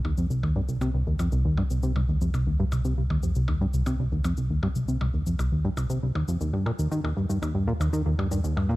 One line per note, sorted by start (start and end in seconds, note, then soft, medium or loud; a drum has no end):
0.00 6.38 C2 medium
0.05 0.14 D#2 medium
0.05 percussion blips soft
0.18 0.27 F2 medium
0.18 cabasa medium
0.30 0.43 C2 medium
0.30 cabasa medium
0.43 0.55 D#2 medium
0.43 percussion blips soft
0.56 0.61 G2 medium
0.69 0.78 C2 medium
0.69 cabasa medium
0.81 0.90 C3 medium
0.81 cabasa soft
0.81 percussion blips soft
0.94 1.03 C2 medium
1.07 1.16 D#2 medium
1.19 1.29 F2 medium
1.19 cabasa medium
1.19 percussion blips soft
1.32 1.44 C2 medium
1.32 cabasa soft
1.45 1.57 D#2 medium
1.57 1.63 G2 loud
1.57 percussion blips soft
1.70 1.80 C2 medium
1.70 cabasa medium
1.83 1.92 C3 medium
1.83 cabasa medium
1.96 2.05 C2 medium
1.96 percussion blips soft
2.09 2.18 D#2 medium
2.21 2.30 F2 medium
2.21 cabasa medium
2.34 2.46 C2 medium
2.34 cabasa medium
2.34 percussion blips soft
2.47 2.59 D#2 medium
2.60 2.65 G2 loud
2.72 2.81 C2 medium
2.72 cabasa medium
2.72 percussion blips soft
2.85 2.94 C3 medium
2.85 cabasa soft
2.98 3.07 C2 medium
3.10 3.19 D#2 medium
3.10 percussion blips soft
3.23 3.32 F2 medium
3.23 cabasa medium
3.35 3.48 C2 medium
3.35 cabasa medium
3.48 3.61 D#2 medium
3.48 percussion blips soft
3.61 3.67 G2 loud
3.74 3.83 C2 medium
3.74 cabasa medium
3.86 3.96 C3 medium
3.86 cabasa medium
3.86 percussion blips soft
3.99 4.08 C2 medium
4.12 4.21 D#2 medium
4.24 4.34 F2 medium
4.24 cabasa medium
4.24 percussion blips soft
4.37 4.50 C2 medium
4.37 cabasa medium
4.50 4.62 D#2 medium
4.63 4.68 G2 loud
4.63 percussion blips soft
4.75 4.85 C2 medium
4.75 cabasa medium
4.88 4.97 C3 medium
4.88 cabasa soft
5.01 5.10 C2 medium
5.01 percussion blips soft
5.14 5.23 D#2 medium
5.26 5.35 F2 medium
5.26 cabasa medium
5.39 5.51 C2 medium
5.39 cabasa soft
5.39 percussion blips soft
5.52 5.64 D#2 medium
5.64 5.70 G2 loud
5.77 5.86 C2 medium
5.77 cabasa medium
5.77 percussion blips soft
5.90 5.99 C3 medium
5.90 cabasa medium
6.03 6.12 C2 medium
6.15 6.24 D#2 medium
6.15 percussion blips soft
6.28 6.37 F2 medium
6.28 cabasa medium
6.41 8.77 D#2 medium
6.41 6.53 D#2 medium
6.41 cabasa soft
6.53 6.65 G2 medium
6.66 6.71 A#2 loud
6.66 percussion blips soft
6.79 6.88 D#2 medium
6.79 cabasa medium
6.92 7.01 D#3 medium
6.92 cabasa soft
7.04 7.13 D#2 medium
7.04 percussion blips soft
7.17 7.26 G2 medium
7.30 7.39 G2 medium
7.30 cabasa medium
7.42 7.54 D#2 medium
7.42 cabasa soft
7.42 percussion blips soft
7.55 7.67 G2 medium
7.68 7.73 A#2 loud
7.80 7.89 D#2 medium
7.80 cabasa medium
7.80 percussion blips soft
7.93 8.02 D#3 medium
7.93 cabasa medium
8.06 8.15 D#2 medium
8.19 8.28 G2 medium
8.19 percussion blips soft
8.31 8.40 G2 medium
8.31 cabasa medium
8.44 8.56 D#2 medium
8.44 cabasa soft
8.57 8.69 G2 medium
8.57 percussion blips soft
8.69 8.75 A#2 loud